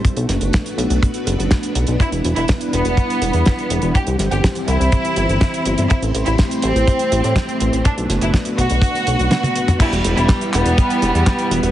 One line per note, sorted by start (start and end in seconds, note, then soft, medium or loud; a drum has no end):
0.04 1.98 A3 medium
0.04 3.91 B3 medium
0.04 3.91 D4 medium
0.04 1.98 F#4 medium
0.04 1.98 B4 medium
0.04 kick loud
0.04 closed hi-hat medium
0.17 0.26 B1 medium
0.17 closed hi-hat medium
0.29 0.38 F#1 medium
0.29 snare soft
0.29 closed hi-hat medium
0.41 0.50 F#1 medium
0.41 closed hi-hat medium
0.53 kick loud
0.53 snare loud
0.53 closed hi-hat medium
0.66 closed hi-hat medium
0.78 0.87 B1 medium
0.78 closed hi-hat medium
0.90 0.99 B1 medium
0.90 closed hi-hat medium
1.03 kick loud
1.03 closed hi-hat medium
1.14 closed hi-hat soft
1.27 1.36 F#1 medium
1.27 closed hi-hat medium
1.39 1.48 F#1 medium
1.39 closed hi-hat medium
1.51 kick loud
1.51 snare loud
1.51 closed hi-hat medium
1.63 closed hi-hat medium
1.75 1.85 B1 medium
1.75 closed hi-hat medium
1.87 1.97 B1 medium
1.87 closed hi-hat medium
2.00 5.86 G3 medium
2.00 3.93 E4 medium
2.00 2.08 E4 medium
2.00 3.93 B4 medium
2.00 kick loud
2.00 closed hi-hat medium
2.12 2.21 E1 medium
2.12 closed hi-hat medium
2.24 2.33 E1 medium
2.24 closed hi-hat medium
2.36 2.46 E1 medium
2.36 2.45 E4 medium
2.36 closed hi-hat medium
2.48 kick loud
2.48 snare loud
2.48 closed hi-hat medium
2.61 closed hi-hat soft
2.73 2.82 E1 medium
2.73 3.85 B3 loud
2.73 closed hi-hat medium
2.85 2.94 E1 medium
2.85 closed hi-hat medium
2.97 kick loud
2.97 closed hi-hat medium
3.10 closed hi-hat medium
3.22 3.31 E1 medium
3.22 closed hi-hat loud
3.33 3.43 E2 medium
3.33 closed hi-hat soft
3.46 kick loud
3.46 snare loud
3.46 closed hi-hat medium
3.59 closed hi-hat soft
3.70 3.80 E1 medium
3.70 closed hi-hat loud
3.82 3.92 E1 medium
3.82 closed hi-hat medium
3.95 5.88 E3 medium
3.95 7.81 C4 medium
3.95 4.03 G4 medium
3.95 5.88 G4 medium
3.95 7.81 C5 medium
3.95 kick loud
3.95 closed hi-hat medium
4.07 4.16 C2 medium
4.07 closed hi-hat medium
4.19 4.29 G1 loud
4.19 snare soft
4.19 closed hi-hat loud
4.31 4.41 G1 medium
4.31 4.39 G4 medium
4.31 closed hi-hat soft
4.44 kick loud
4.44 snare loud
4.44 closed hi-hat medium
4.55 closed hi-hat medium
4.68 4.77 C2 medium
4.68 5.80 E4 loud
4.68 closed hi-hat medium
4.80 4.90 C2 medium
4.80 closed hi-hat medium
4.92 kick loud
4.92 closed hi-hat medium
5.05 closed hi-hat medium
5.16 5.26 G1 medium
5.16 closed hi-hat medium
5.29 5.38 G1 medium
5.29 closed hi-hat medium
5.41 kick loud
5.41 snare loud
5.41 closed hi-hat medium
5.54 closed hi-hat medium
5.65 5.75 G1 medium
5.65 closed hi-hat loud
5.78 5.87 G1 medium
5.78 closed hi-hat medium
5.90 9.76 A3 medium
5.90 5.98 E4 medium
5.90 7.83 E4 medium
5.90 7.83 G4 medium
5.90 kick loud
5.90 closed hi-hat medium
6.02 6.12 A1 medium
6.02 closed hi-hat medium
6.15 6.24 A1 medium
6.15 closed hi-hat medium
6.26 6.36 A1 medium
6.26 6.34 E4 medium
6.26 closed hi-hat medium
6.38 kick loud
6.38 snare loud
6.38 closed hi-hat medium
6.51 closed hi-hat medium
6.62 6.73 A1 loud
6.62 7.75 C4 loud
6.62 closed hi-hat medium
6.76 6.85 A1 medium
6.76 closed hi-hat medium
6.88 kick loud
6.88 closed hi-hat medium
6.99 closed hi-hat medium
7.12 7.21 A1 medium
7.12 closed hi-hat loud
7.24 7.33 A2 medium
7.24 closed hi-hat medium
7.36 kick loud
7.36 snare loud
7.36 closed hi-hat medium
7.49 closed hi-hat medium
7.60 7.70 A1 medium
7.60 closed hi-hat medium
7.73 7.82 A1 medium
7.73 closed hi-hat medium
7.85 9.78 B3 medium
7.85 9.78 D4 medium
7.85 7.93 D4 medium
7.85 9.78 F#4 medium
7.85 9.78 B4 medium
7.85 kick loud
7.85 closed hi-hat medium
7.98 8.07 B1 medium
7.98 closed hi-hat medium
8.09 8.19 F#1 medium
8.09 snare soft
8.09 closed hi-hat loud
8.21 8.31 F#1 medium
8.21 8.30 E4 medium
8.21 closed hi-hat medium
8.34 kick loud
8.34 snare loud
8.34 closed hi-hat medium
8.45 closed hi-hat medium
8.58 8.68 B1 medium
8.58 9.71 F#4 loud
8.58 kick medium
8.58 closed hi-hat loud
8.70 8.80 B1 medium
8.70 closed hi-hat medium
8.82 kick loud
8.82 closed hi-hat medium
8.95 closed hi-hat soft
9.07 9.16 B1 medium
9.07 closed hi-hat loud
9.19 9.29 B1 medium
9.19 closed hi-hat soft
9.31 snare loud
9.31 closed hi-hat medium
9.31 high tom medium
9.43 closed hi-hat medium
9.43 high tom medium
9.55 closed hi-hat loud
9.68 closed hi-hat medium
9.68 mid tom medium
9.80 11.71 G3 medium
9.80 10.10 G3 medium
9.80 11.71 B3 medium
9.80 11.71 E4 medium
9.80 9.88 E4 loud
9.80 11.71 B4 medium
9.80 11.71 E5 medium
9.80 kick loud
9.80 closed hi-hat medium
9.80 crash loud
9.93 10.02 E1 medium
9.93 closed hi-hat medium
10.04 10.14 E1 loud
10.04 closed hi-hat loud
10.17 10.26 E1 medium
10.17 10.46 G3 medium
10.17 10.25 E4 medium
10.17 closed hi-hat medium
10.28 kick loud
10.28 snare loud
10.28 clap loud
10.28 closed hi-hat medium
10.41 closed hi-hat medium
10.53 10.63 E1 medium
10.53 11.66 G3 medium
10.53 11.66 B3 loud
10.53 clap medium
10.53 closed hi-hat loud
10.66 10.75 E1 medium
10.66 closed hi-hat medium
10.78 kick loud
10.78 closed hi-hat medium
10.90 closed hi-hat medium
11.02 11.12 E1 loud
11.02 closed hi-hat loud
11.15 11.24 E2 medium
11.15 closed hi-hat medium
11.26 kick loud
11.26 snare loud
11.26 clap medium
11.26 closed hi-hat medium
11.39 closed hi-hat medium
11.51 11.60 E1 medium
11.51 closed hi-hat loud
11.63 11.71 E1 medium
11.63 closed hi-hat medium